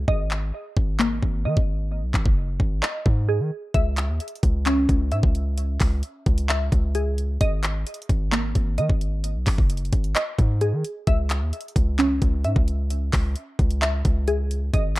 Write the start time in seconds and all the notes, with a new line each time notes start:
0.08 G#1 D#5, kick
0.31 clap
0.77 G#1, kick
1.00 A#3, clap
1.23 G#1, kick
1.45 D#3 D#5
1.57 G#1, kick
2.03 B1
2.14 G#1, kick, clap
2.26 F#1, kick
2.60 G#1, kick
2.83 D#5, clap
3.06 G#2, kick
3.29 G#4
3.40 D#3
3.74 C#2 E5, kick, closed hi-hat
3.97 clap, closed hi-hat
4.09 D#2
4.20 closed hi-hat
4.28 closed hi-hat
4.35 closed hi-hat
4.43 C#2, kick, closed hi-hat
4.66 C#4, clap, closed hi-hat
4.89 C#2, kick, closed hi-hat
5.12 G#2 E5, closed hi-hat
5.23 C#2, kick
5.35 closed hi-hat
5.58 closed hi-hat
5.80 C#2, kick, clap, open hi-hat
6.03 closed hi-hat
6.26 C#2, kick, closed hi-hat
6.38 closed hi-hat
6.49 E5, clap, closed hi-hat
6.72 C#2, kick, closed hi-hat
6.95 G#4, closed hi-hat
7.18 closed hi-hat
7.41 G#1 D#5, kick, closed hi-hat
7.63 clap, closed hi-hat
7.87 closed hi-hat
7.94 closed hi-hat
8.02 closed hi-hat
8.09 G#1, kick, closed hi-hat
8.32 A#3, clap, closed hi-hat
8.55 G#1, kick, closed hi-hat
8.78 D#3 D#5, closed hi-hat
8.90 G#1, kick
9.01 closed hi-hat
9.24 closed hi-hat
9.35 B1
9.46 G#1, kick, clap, open hi-hat
9.58 F#1, kick
9.70 closed hi-hat
9.77 closed hi-hat
9.85 closed hi-hat
9.93 G#1, kick, closed hi-hat
10.04 closed hi-hat
10.16 D#5, clap, closed hi-hat
10.38 G#2, kick, closed hi-hat
10.61 G#4, closed hi-hat
10.73 D#3
10.84 closed hi-hat
11.07 C#2 E5, kick, closed hi-hat
11.30 clap, closed hi-hat
11.41 D#2
11.53 closed hi-hat
11.61 closed hi-hat
11.68 closed hi-hat
11.76 C#2, kick, closed hi-hat
11.99 C#4, clap, closed hi-hat
12.22 C#2, kick, closed hi-hat
12.44 G#2 E5, closed hi-hat
12.56 C#2, kick
12.68 closed hi-hat
12.90 closed hi-hat
13.13 C#2, kick, clap, open hi-hat
13.36 closed hi-hat
13.59 C#2, kick, closed hi-hat
13.71 closed hi-hat
13.82 E5, clap, closed hi-hat
14.05 C#2, kick, closed hi-hat
14.28 G#4, closed hi-hat
14.51 closed hi-hat
14.74 G#1 D#5, kick, closed hi-hat
14.96 clap, closed hi-hat